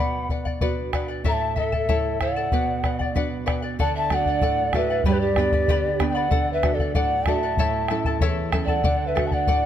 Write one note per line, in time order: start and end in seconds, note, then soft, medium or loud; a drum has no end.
0.00 1.22 B2 medium
0.00 0.29 B4 medium
0.00 0.29 D5 medium
0.00 0.28 F#5 medium
0.00 0.30 F#5 medium
0.00 0.28 B5 loud
0.29 0.46 B4 medium
0.29 0.45 D5 medium
0.29 0.44 F#5 medium
0.29 bombo low medium
0.45 0.60 D5 soft
0.45 0.61 F#5 medium
0.45 bombo low medium
0.61 1.23 B3 medium
0.61 1.23 D4 soft
0.61 1.24 F#4 medium
0.61 0.92 B4 medium
0.61 0.93 D5 medium
0.61 0.93 F#5 loud
0.61 bombo low medium
0.93 1.09 B4 medium
0.93 1.08 D5 medium
0.93 1.07 F#5 medium
0.93 bombo rim medium
0.93 bombo low medium
1.08 1.25 D5 soft
1.08 1.25 F#5 medium
1.24 2.48 A2 medium
1.24 1.55 E4 medium
1.24 1.56 A4 medium
1.24 1.57 C#5 medium
1.24 1.55 E5 medium
1.24 1.56 A5 medium
1.24 1.34 A#5 loud
1.24 bombo low medium
1.28 1.56 E5 medium
1.33 1.56 A5 loud
1.56 1.73 E4 medium
1.56 1.72 A4 medium
1.56 1.72 E5 medium
1.56 2.22 E5 medium
1.56 1.71 A5 medium
1.56 bombo low medium
1.60 2.23 A4 medium
1.72 1.88 E4 soft
1.72 1.88 A4 soft
1.72 1.88 A5 medium
1.72 bombo low medium
1.89 2.50 C#3 soft
1.89 2.50 A3 soft
1.89 2.20 E4 medium
1.89 2.50 E4 medium
1.89 2.21 A4 medium
1.89 2.20 C#5 medium
1.89 2.19 E5 medium
1.89 2.21 A5 medium
1.89 bombo low medium
2.20 2.36 E4 medium
2.20 2.36 A4 medium
2.20 3.16 D5 medium
2.20 2.36 E5 medium
2.20 3.15 F#5 medium
2.20 2.35 A5 medium
2.20 bombo rim medium
2.20 bombo low medium
2.36 2.53 E4 soft
2.36 2.52 A4 soft
2.36 2.52 A5 medium
2.52 3.75 B2 medium
2.52 2.82 B4 medium
2.52 2.83 D5 medium
2.52 2.84 F#5 medium
2.52 bombo low medium
2.83 2.99 B4 medium
2.83 3.00 D5 medium
2.83 2.98 F#5 medium
2.83 bombo rim soft
2.83 bombo low medium
2.99 3.15 D5 soft
2.99 3.15 F#5 medium
2.99 bombo low medium
3.15 3.77 B3 soft
3.15 3.77 D4 soft
3.15 3.77 F#4 medium
3.15 3.45 B4 medium
3.15 3.45 D5 medium
3.15 3.46 F#5 medium
3.15 bombo low medium
3.46 3.62 B4 medium
3.46 3.62 D5 medium
3.46 3.61 F#5 medium
3.46 bombo rim medium
3.46 bombo low medium
3.62 3.78 D5 soft
3.62 3.78 F#5 medium
3.79 4.40 D3 medium
3.79 4.09 A4 medium
3.79 4.10 D5 medium
3.79 3.95 D5 loud
3.79 4.11 F#5 medium
3.79 3.94 A5 loud
3.79 bombo low medium
3.95 4.15 E5 medium
3.95 4.15 A5 loud
4.10 4.61 A3 soft
4.10 4.61 D4 soft
4.10 4.61 F#4 medium
4.10 4.26 A4 medium
4.10 4.27 D5 medium
4.10 4.78 D5 loud
4.10 4.26 F#5 medium
4.10 4.77 F#5 loud
4.10 bombo rim soft
4.10 bombo low soft
4.26 4.42 D5 soft
4.26 4.42 F#5 medium
4.26 bombo low medium
4.41 5.03 A2 medium
4.41 4.73 A4 medium
4.41 4.74 D5 medium
4.41 4.74 F#5 medium
4.41 bombo low medium
4.73 4.98 A3 medium
4.73 4.99 D4 medium
4.73 4.99 F#4 medium
4.73 4.90 A4 medium
4.73 5.07 B4 medium
4.73 4.90 D5 medium
4.73 5.06 E5 loud
4.73 4.89 F#5 medium
4.73 bombo rim medium
4.73 bombo low medium
4.90 5.05 D5 soft
4.90 5.06 F#5 medium
5.04 5.67 G2 medium
5.04 5.37 G4 medium
5.04 5.37 B4 medium
5.04 5.37 D5 medium
5.04 5.14 D5 loud
5.04 5.37 G5 medium
5.04 5.38 B5 medium
5.04 bombo low medium
5.08 5.13 G4 medium
5.13 5.20 G4 medium
5.13 5.22 B4 medium
5.20 6.01 G4 medium
5.20 6.01 D5 loud
5.36 5.87 B3 soft
5.36 5.88 D4 soft
5.36 5.88 G4 medium
5.36 5.52 B4 medium
5.36 5.52 D5 medium
5.36 5.53 G5 medium
5.36 5.51 B5 medium
5.36 bombo rim medium
5.36 bombo low medium
5.52 5.68 B4 soft
5.52 5.69 D5 medium
5.52 5.69 B5 medium
5.52 bombo low medium
5.68 6.30 D3 medium
5.68 6.00 G4 medium
5.68 5.99 B4 medium
5.68 6.00 D5 medium
5.68 5.98 G5 medium
5.68 6.00 B5 loud
5.68 bombo low medium
5.99 6.25 B3 medium
5.99 6.25 D4 soft
5.99 6.25 G4 medium
5.99 6.16 B4 medium
5.99 6.15 D5 medium
5.99 6.16 G5 medium
5.99 6.14 B5 medium
5.99 bombo rim medium
5.99 bombo low medium
6.10 6.51 D5 medium
6.10 6.15 G5 medium
6.14 6.30 B4 soft
6.14 6.30 D5 medium
6.14 6.49 F#5 loud
6.14 6.31 B5 medium
6.31 6.93 D3 medium
6.31 6.62 A4 medium
6.31 6.63 D5 medium
6.31 6.63 F#5 medium
6.31 bombo low medium
6.53 6.75 B4 medium
6.53 6.76 E5 medium
6.63 7.14 A3 soft
6.63 7.14 D4 soft
6.63 7.14 F#4 medium
6.63 6.79 A4 medium
6.63 6.80 D5 medium
6.63 6.79 F#5 medium
6.63 bombo rim medium
6.63 bombo low medium
6.74 6.96 A4 medium
6.74 6.97 D5 medium
6.79 6.94 D5 soft
6.79 6.95 F#5 medium
6.79 bombo low medium
6.95 7.57 A2 medium
6.95 7.26 A4 medium
6.95 7.28 D5 medium
6.95 7.27 D5 medium
6.95 7.30 F#5 loud
6.95 7.27 F#5 medium
6.95 bombo low medium
7.26 7.52 A3 medium
7.26 7.52 D4 soft
7.26 7.52 F#4 medium
7.26 7.43 A4 medium
7.26 7.43 D5 medium
7.26 8.22 E5 medium
7.26 7.42 F#5 medium
7.26 8.22 A5 loud
7.26 bombo rim medium
7.26 bombo low medium
7.43 7.59 D5 soft
7.43 7.59 F#5 medium
7.57 8.20 A2 medium
7.57 7.89 E4 medium
7.57 7.90 A4 medium
7.57 7.90 C#5 medium
7.57 7.89 E5 medium
7.57 7.90 A5 medium
7.57 bombo low medium
7.88 8.41 A3 medium
7.88 8.41 C#4 soft
7.88 8.06 E4 medium
7.88 8.41 E4 medium
7.88 8.05 A4 medium
7.88 8.06 E5 medium
7.88 8.05 A5 medium
7.88 bombo rim medium
8.05 8.21 E4 medium
8.05 8.21 A4 medium
8.05 8.22 A5 medium
8.05 bombo low medium
8.21 8.83 E2 medium
8.21 8.51 E4 loud
8.21 8.52 A4 loud
8.21 8.53 C#5 loud
8.21 8.51 E5 medium
8.21 8.52 A5 loud
8.21 bombo low medium
8.52 8.78 A3 soft
8.52 8.78 C#4 medium
8.52 8.68 E4 medium
8.52 8.78 E4 medium
8.52 8.67 A4 medium
8.52 8.68 E5 medium
8.52 8.67 A5 medium
8.52 bombo rim medium
8.52 bombo low medium
8.64 9.08 D5 medium
8.64 8.70 G5 medium
8.64 8.84 A5 medium
8.64 bombo low medium
8.69 8.85 E4 soft
8.69 8.83 A4 soft
8.69 9.09 F#5 medium
8.84 9.46 D3 medium
8.84 9.14 A4 medium
8.84 9.14 D5 medium
8.84 9.15 F#5 medium
8.84 bombo low loud
9.07 9.27 B4 medium
9.07 9.28 E5 medium
9.15 9.66 A3 soft
9.15 9.66 D4 soft
9.15 9.66 F#4 medium
9.15 9.32 A4 medium
9.15 9.32 D5 medium
9.15 9.31 F#5 medium
9.15 bombo rim medium
9.15 bombo low medium
9.26 9.35 E5 medium
9.26 9.35 A5 medium
9.31 9.47 D5 soft
9.31 9.66 D5 medium
9.31 9.47 F#5 soft
9.31 9.66 F#5 loud
9.31 bombo low medium
9.47 9.66 A2 medium
9.47 9.66 A4 medium
9.47 9.66 D5 medium
9.47 9.66 F#5 medium
9.47 bombo low medium